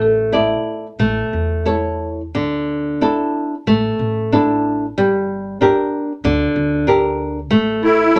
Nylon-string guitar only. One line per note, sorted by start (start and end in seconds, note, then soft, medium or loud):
0.00 0.31 A3 medium
0.32 0.86 E4 medium
0.32 0.86 A4 soft
0.32 0.86 D5 medium
0.99 1.65 A3 medium
1.66 2.20 E4 soft
1.66 2.20 A4 soft
1.66 2.20 C#5 soft
2.35 2.99 D3 medium
3.01 3.54 D4 soft
3.01 3.54 E4 soft
3.01 3.54 A4 medium
3.67 4.31 A3 medium
4.32 4.85 D4 soft
4.32 4.85 E4 soft
4.32 4.85 A4 medium
4.98 5.59 G3 medium
5.61 6.11 D4 medium
5.61 6.12 G4 soft
5.61 6.12 A#4 medium
6.25 6.86 D3 medium
6.87 7.38 D4 medium
6.87 7.39 G4 soft
6.87 7.39 A#4 medium
7.51 8.13 A3 medium
8.16 8.19 E4 medium
8.16 8.19 A4 medium
8.16 8.19 C#5 medium